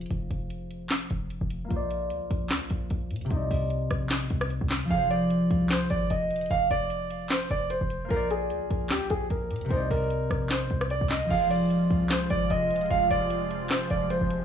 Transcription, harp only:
0, 0, Header, 1, 2, 480
1, 0, Start_track
1, 0, Tempo, 400000
1, 127, Time_signature, 4, 2, 24, 8
1, 17338, End_track
2, 0, Start_track
2, 0, Title_t, "Harp"
2, 0, Program_c, 0, 46
2, 0, Note_on_c, 0, 53, 65
2, 0, Note_on_c, 0, 65, 67
2, 0, Note_on_c, 0, 68, 61
2, 0, Note_on_c, 0, 72, 79
2, 1974, Note_on_c, 0, 58, 61
2, 1989, Note_off_c, 0, 65, 0
2, 2012, Note_off_c, 0, 68, 0
2, 2021, Note_on_c, 0, 65, 61
2, 2035, Note_off_c, 0, 72, 0
2, 2067, Note_on_c, 0, 72, 61
2, 2107, Note_off_c, 0, 53, 0
2, 2113, Note_on_c, 0, 74, 81
2, 3896, Note_on_c, 0, 48, 70
2, 3942, Note_on_c, 0, 60, 67
2, 3989, Note_on_c, 0, 63, 62
2, 4030, Note_off_c, 0, 74, 0
2, 4035, Note_on_c, 0, 74, 73
2, 4442, Note_off_c, 0, 72, 0
2, 5048, Note_off_c, 0, 65, 0
2, 5820, Note_on_c, 0, 53, 68
2, 5832, Note_off_c, 0, 58, 0
2, 5866, Note_on_c, 0, 65, 63
2, 5913, Note_on_c, 0, 68, 62
2, 5947, Note_off_c, 0, 48, 0
2, 5959, Note_on_c, 0, 72, 77
2, 6251, Note_off_c, 0, 74, 0
2, 7233, Note_off_c, 0, 63, 0
2, 7542, Note_off_c, 0, 60, 0
2, 9655, Note_on_c, 0, 58, 62
2, 9669, Note_off_c, 0, 65, 0
2, 9692, Note_off_c, 0, 68, 0
2, 9702, Note_on_c, 0, 65, 61
2, 9715, Note_off_c, 0, 72, 0
2, 9747, Note_on_c, 0, 72, 60
2, 9787, Note_off_c, 0, 53, 0
2, 9794, Note_on_c, 0, 74, 80
2, 11576, Note_on_c, 0, 48, 70
2, 11622, Note_on_c, 0, 60, 69
2, 11669, Note_on_c, 0, 63, 61
2, 11710, Note_off_c, 0, 74, 0
2, 11715, Note_on_c, 0, 74, 70
2, 12123, Note_off_c, 0, 72, 0
2, 12729, Note_off_c, 0, 65, 0
2, 13500, Note_on_c, 0, 53, 66
2, 13513, Note_off_c, 0, 58, 0
2, 13547, Note_on_c, 0, 65, 67
2, 13593, Note_on_c, 0, 68, 64
2, 13627, Note_off_c, 0, 48, 0
2, 13640, Note_on_c, 0, 72, 76
2, 13931, Note_off_c, 0, 74, 0
2, 14913, Note_off_c, 0, 63, 0
2, 15222, Note_off_c, 0, 60, 0
2, 17338, Note_off_c, 0, 53, 0
2, 17338, Note_off_c, 0, 65, 0
2, 17338, Note_off_c, 0, 68, 0
2, 17338, Note_off_c, 0, 72, 0
2, 17338, End_track
0, 0, End_of_file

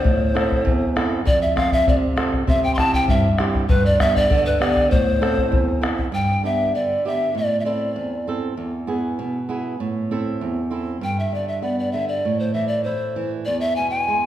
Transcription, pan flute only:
0, 0, Header, 1, 2, 480
1, 0, Start_track
1, 0, Key_signature, 0, "minor"
1, 0, Tempo, 610376
1, 32, Time_signature, 2, 2, 24, 8
1, 11214, End_track
2, 0, Start_track
2, 0, Title_t, "Pan flute"
2, 0, Program_c, 0, 75
2, 0, Note_on_c, 0, 72, 79
2, 750, Note_off_c, 0, 72, 0
2, 999, Note_on_c, 0, 74, 92
2, 1106, Note_off_c, 0, 74, 0
2, 1116, Note_on_c, 0, 76, 88
2, 1225, Note_off_c, 0, 76, 0
2, 1229, Note_on_c, 0, 77, 93
2, 1360, Note_on_c, 0, 76, 95
2, 1372, Note_off_c, 0, 77, 0
2, 1475, Note_off_c, 0, 76, 0
2, 1483, Note_on_c, 0, 74, 71
2, 1536, Note_off_c, 0, 74, 0
2, 1958, Note_on_c, 0, 76, 95
2, 2065, Note_off_c, 0, 76, 0
2, 2076, Note_on_c, 0, 79, 88
2, 2159, Note_on_c, 0, 84, 74
2, 2171, Note_off_c, 0, 79, 0
2, 2190, Note_on_c, 0, 81, 98
2, 2202, Note_off_c, 0, 84, 0
2, 2312, Note_on_c, 0, 79, 92
2, 2324, Note_off_c, 0, 81, 0
2, 2427, Note_off_c, 0, 79, 0
2, 2432, Note_on_c, 0, 76, 69
2, 2653, Note_off_c, 0, 76, 0
2, 2903, Note_on_c, 0, 71, 99
2, 3016, Note_off_c, 0, 71, 0
2, 3034, Note_on_c, 0, 74, 94
2, 3149, Note_on_c, 0, 76, 101
2, 3160, Note_off_c, 0, 74, 0
2, 3274, Note_on_c, 0, 74, 95
2, 3285, Note_off_c, 0, 76, 0
2, 3504, Note_on_c, 0, 71, 83
2, 3516, Note_off_c, 0, 74, 0
2, 3625, Note_off_c, 0, 71, 0
2, 3628, Note_on_c, 0, 74, 96
2, 3859, Note_on_c, 0, 72, 89
2, 3871, Note_off_c, 0, 74, 0
2, 4581, Note_off_c, 0, 72, 0
2, 4831, Note_on_c, 0, 79, 85
2, 5051, Note_off_c, 0, 79, 0
2, 5076, Note_on_c, 0, 76, 74
2, 5307, Note_on_c, 0, 74, 68
2, 5319, Note_off_c, 0, 76, 0
2, 5559, Note_on_c, 0, 76, 81
2, 5570, Note_off_c, 0, 74, 0
2, 5792, Note_off_c, 0, 76, 0
2, 5798, Note_on_c, 0, 74, 79
2, 5965, Note_off_c, 0, 74, 0
2, 5977, Note_on_c, 0, 76, 48
2, 6019, Note_on_c, 0, 74, 67
2, 6030, Note_off_c, 0, 76, 0
2, 6503, Note_off_c, 0, 74, 0
2, 8679, Note_on_c, 0, 79, 78
2, 8788, Note_off_c, 0, 79, 0
2, 8804, Note_on_c, 0, 76, 61
2, 8920, Note_on_c, 0, 74, 64
2, 8932, Note_off_c, 0, 76, 0
2, 9023, Note_off_c, 0, 74, 0
2, 9028, Note_on_c, 0, 76, 70
2, 9138, Note_off_c, 0, 76, 0
2, 9142, Note_on_c, 0, 74, 64
2, 9259, Note_off_c, 0, 74, 0
2, 9272, Note_on_c, 0, 74, 67
2, 9373, Note_on_c, 0, 76, 75
2, 9385, Note_off_c, 0, 74, 0
2, 9496, Note_off_c, 0, 76, 0
2, 9501, Note_on_c, 0, 74, 70
2, 9747, Note_on_c, 0, 72, 70
2, 9759, Note_off_c, 0, 74, 0
2, 9859, Note_on_c, 0, 76, 72
2, 9871, Note_off_c, 0, 72, 0
2, 9965, Note_off_c, 0, 76, 0
2, 9970, Note_on_c, 0, 74, 69
2, 10094, Note_on_c, 0, 72, 66
2, 10105, Note_off_c, 0, 74, 0
2, 10464, Note_off_c, 0, 72, 0
2, 10580, Note_on_c, 0, 74, 88
2, 10694, Note_off_c, 0, 74, 0
2, 10699, Note_on_c, 0, 76, 84
2, 10820, Note_on_c, 0, 80, 81
2, 10832, Note_off_c, 0, 76, 0
2, 10927, Note_off_c, 0, 80, 0
2, 10932, Note_on_c, 0, 80, 94
2, 11214, Note_off_c, 0, 80, 0
2, 11214, End_track
0, 0, End_of_file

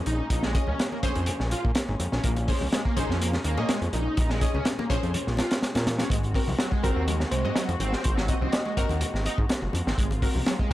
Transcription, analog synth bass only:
0, 0, Header, 1, 2, 480
1, 0, Start_track
1, 0, Key_signature, -5, "minor"
1, 0, Tempo, 483871
1, 302, Time_signature, 4, 2, 24, 8
1, 10644, End_track
2, 0, Start_track
2, 0, Title_t, "Analog synth bass"
2, 0, Program_c, 0, 38
2, 62, Note_on_c, 0, 34, 91
2, 213, Note_off_c, 0, 34, 0
2, 299, Note_on_c, 0, 34, 103
2, 587, Note_off_c, 0, 34, 0
2, 670, Note_on_c, 0, 37, 105
2, 737, Note_off_c, 0, 37, 0
2, 1023, Note_on_c, 0, 34, 82
2, 1099, Note_off_c, 0, 34, 0
2, 1151, Note_on_c, 0, 41, 105
2, 1289, Note_off_c, 0, 41, 0
2, 1389, Note_on_c, 0, 34, 99
2, 1528, Note_off_c, 0, 34, 0
2, 1635, Note_on_c, 0, 46, 92
2, 1700, Note_off_c, 0, 46, 0
2, 1869, Note_on_c, 0, 32, 105
2, 1936, Note_off_c, 0, 32, 0
2, 1981, Note_on_c, 0, 41, 94
2, 2058, Note_off_c, 0, 41, 0
2, 2107, Note_on_c, 0, 34, 98
2, 2176, Note_off_c, 0, 34, 0
2, 2221, Note_on_c, 0, 34, 103
2, 2508, Note_off_c, 0, 34, 0
2, 2590, Note_on_c, 0, 37, 106
2, 2657, Note_off_c, 0, 37, 0
2, 2946, Note_on_c, 0, 34, 85
2, 3021, Note_off_c, 0, 34, 0
2, 3067, Note_on_c, 0, 41, 104
2, 3349, Note_off_c, 0, 41, 0
2, 3416, Note_on_c, 0, 39, 108
2, 3545, Note_on_c, 0, 46, 85
2, 3559, Note_off_c, 0, 39, 0
2, 3615, Note_off_c, 0, 46, 0
2, 3785, Note_on_c, 0, 41, 96
2, 3855, Note_off_c, 0, 41, 0
2, 3900, Note_on_c, 0, 34, 95
2, 4052, Note_off_c, 0, 34, 0
2, 4142, Note_on_c, 0, 34, 103
2, 4428, Note_off_c, 0, 34, 0
2, 4506, Note_on_c, 0, 37, 107
2, 4575, Note_off_c, 0, 37, 0
2, 4861, Note_on_c, 0, 34, 84
2, 4938, Note_off_c, 0, 34, 0
2, 4990, Note_on_c, 0, 41, 102
2, 5128, Note_off_c, 0, 41, 0
2, 5231, Note_on_c, 0, 34, 101
2, 5369, Note_off_c, 0, 34, 0
2, 5708, Note_on_c, 0, 46, 92
2, 5990, Note_off_c, 0, 46, 0
2, 6052, Note_on_c, 0, 32, 105
2, 6343, Note_off_c, 0, 32, 0
2, 6426, Note_on_c, 0, 36, 106
2, 6495, Note_off_c, 0, 36, 0
2, 6784, Note_on_c, 0, 32, 85
2, 6860, Note_off_c, 0, 32, 0
2, 6906, Note_on_c, 0, 39, 106
2, 7189, Note_off_c, 0, 39, 0
2, 7256, Note_on_c, 0, 36, 109
2, 7385, Note_on_c, 0, 44, 90
2, 7399, Note_off_c, 0, 36, 0
2, 7454, Note_off_c, 0, 44, 0
2, 7623, Note_on_c, 0, 41, 90
2, 7694, Note_off_c, 0, 41, 0
2, 7734, Note_on_c, 0, 32, 92
2, 7889, Note_off_c, 0, 32, 0
2, 7990, Note_on_c, 0, 32, 105
2, 8272, Note_off_c, 0, 32, 0
2, 8343, Note_on_c, 0, 36, 106
2, 8414, Note_off_c, 0, 36, 0
2, 8700, Note_on_c, 0, 32, 81
2, 8778, Note_off_c, 0, 32, 0
2, 8823, Note_on_c, 0, 39, 106
2, 8965, Note_off_c, 0, 39, 0
2, 9066, Note_on_c, 0, 32, 97
2, 9206, Note_off_c, 0, 32, 0
2, 9307, Note_on_c, 0, 44, 90
2, 9375, Note_off_c, 0, 44, 0
2, 9544, Note_on_c, 0, 30, 105
2, 9614, Note_off_c, 0, 30, 0
2, 9659, Note_on_c, 0, 41, 96
2, 9737, Note_off_c, 0, 41, 0
2, 9788, Note_on_c, 0, 32, 101
2, 9856, Note_off_c, 0, 32, 0
2, 9899, Note_on_c, 0, 32, 101
2, 10187, Note_off_c, 0, 32, 0
2, 10269, Note_on_c, 0, 36, 107
2, 10337, Note_off_c, 0, 36, 0
2, 10644, End_track
0, 0, End_of_file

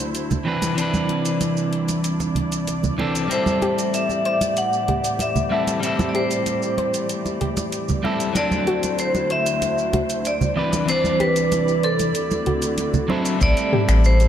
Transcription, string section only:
0, 0, Header, 1, 2, 480
1, 0, Start_track
1, 0, Tempo, 631579
1, 594, Time_signature, 4, 2, 24, 8
1, 10854, End_track
2, 0, Start_track
2, 0, Title_t, "String section"
2, 0, Program_c, 0, 48
2, 0, Note_on_c, 0, 38, 72
2, 0, Note_on_c, 0, 50, 69
2, 0, Note_on_c, 0, 64, 65
2, 0, Note_on_c, 0, 66, 65
2, 0, Note_on_c, 0, 72, 79
2, 322, Note_off_c, 0, 66, 0
2, 339, Note_off_c, 0, 50, 0
2, 340, Note_off_c, 0, 38, 0
2, 340, Note_off_c, 0, 72, 0
2, 351, Note_on_c, 0, 48, 60
2, 351, Note_on_c, 0, 62, 60
2, 351, Note_on_c, 0, 74, 67
2, 352, Note_on_c, 0, 36, 61
2, 2486, Note_off_c, 0, 64, 0
2, 2491, Note_off_c, 0, 48, 0
2, 2491, Note_off_c, 0, 62, 0
2, 2492, Note_off_c, 0, 36, 0
2, 2513, Note_on_c, 0, 60, 62
2, 2514, Note_on_c, 0, 45, 67
2, 2514, Note_on_c, 0, 67, 63
2, 2515, Note_on_c, 0, 52, 61
2, 6322, Note_off_c, 0, 74, 0
2, 6323, Note_off_c, 0, 60, 0
2, 6324, Note_off_c, 0, 45, 0
2, 6324, Note_off_c, 0, 52, 0
2, 6324, Note_off_c, 0, 67, 0
2, 6356, Note_on_c, 0, 50, 68
2, 6357, Note_on_c, 0, 38, 73
2, 6357, Note_on_c, 0, 72, 81
2, 6358, Note_on_c, 0, 64, 66
2, 6358, Note_on_c, 0, 66, 65
2, 8018, Note_off_c, 0, 50, 0
2, 8019, Note_off_c, 0, 38, 0
2, 8019, Note_off_c, 0, 64, 0
2, 8019, Note_off_c, 0, 66, 0
2, 8019, Note_off_c, 0, 72, 0
2, 8036, Note_on_c, 0, 36, 70
2, 8036, Note_on_c, 0, 48, 58
2, 8036, Note_on_c, 0, 62, 67
2, 8036, Note_on_c, 0, 74, 80
2, 8037, Note_on_c, 0, 64, 62
2, 9223, Note_off_c, 0, 36, 0
2, 9223, Note_off_c, 0, 48, 0
2, 9223, Note_off_c, 0, 62, 0
2, 9234, Note_on_c, 0, 38, 66
2, 9235, Note_on_c, 0, 50, 63
2, 9236, Note_on_c, 0, 60, 63
2, 9236, Note_on_c, 0, 66, 66
2, 10174, Note_off_c, 0, 64, 0
2, 10174, Note_off_c, 0, 74, 0
2, 10185, Note_off_c, 0, 38, 0
2, 10185, Note_off_c, 0, 50, 0
2, 10186, Note_off_c, 0, 60, 0
2, 10186, Note_off_c, 0, 66, 0
2, 10194, Note_on_c, 0, 60, 74
2, 10195, Note_on_c, 0, 57, 81
2, 10196, Note_on_c, 0, 67, 91
2, 10854, Note_off_c, 0, 57, 0
2, 10854, Note_off_c, 0, 60, 0
2, 10854, Note_off_c, 0, 67, 0
2, 10854, End_track
0, 0, End_of_file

